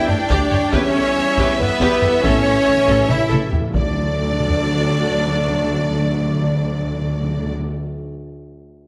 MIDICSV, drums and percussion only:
0, 0, Header, 1, 2, 480
1, 0, Start_track
1, 0, Key_signature, 2, "major"
1, 0, Tempo, 430416
1, 816, Time_signature, 7, 3, 24, 8
1, 9897, End_track
2, 0, Start_track
2, 0, Title_t, "Taiko and cinematic ensemble drums"
2, 96, Note_on_c, 9, 45, 72
2, 207, Note_off_c, 9, 45, 0
2, 334, Note_on_c, 9, 41, 90
2, 445, Note_off_c, 9, 41, 0
2, 577, Note_on_c, 9, 45, 71
2, 689, Note_off_c, 9, 45, 0
2, 813, Note_on_c, 9, 41, 112
2, 924, Note_off_c, 9, 41, 0
2, 1535, Note_on_c, 9, 41, 88
2, 1647, Note_off_c, 9, 41, 0
2, 1778, Note_on_c, 9, 45, 68
2, 1889, Note_off_c, 9, 45, 0
2, 2017, Note_on_c, 9, 41, 95
2, 2129, Note_off_c, 9, 41, 0
2, 2254, Note_on_c, 9, 45, 72
2, 2366, Note_off_c, 9, 45, 0
2, 2497, Note_on_c, 9, 41, 117
2, 2608, Note_off_c, 9, 41, 0
2, 2732, Note_on_c, 9, 37, 44
2, 2844, Note_off_c, 9, 37, 0
2, 3211, Note_on_c, 9, 41, 87
2, 3323, Note_off_c, 9, 41, 0
2, 3451, Note_on_c, 9, 47, 84
2, 3563, Note_off_c, 9, 47, 0
2, 3700, Note_on_c, 9, 47, 97
2, 3812, Note_off_c, 9, 47, 0
2, 3935, Note_on_c, 9, 43, 91
2, 4047, Note_off_c, 9, 43, 0
2, 4176, Note_on_c, 9, 41, 101
2, 4287, Note_off_c, 9, 41, 0
2, 4904, Note_on_c, 9, 47, 50
2, 5016, Note_off_c, 9, 47, 0
2, 5017, Note_on_c, 9, 43, 72
2, 5128, Note_off_c, 9, 43, 0
2, 9897, End_track
0, 0, End_of_file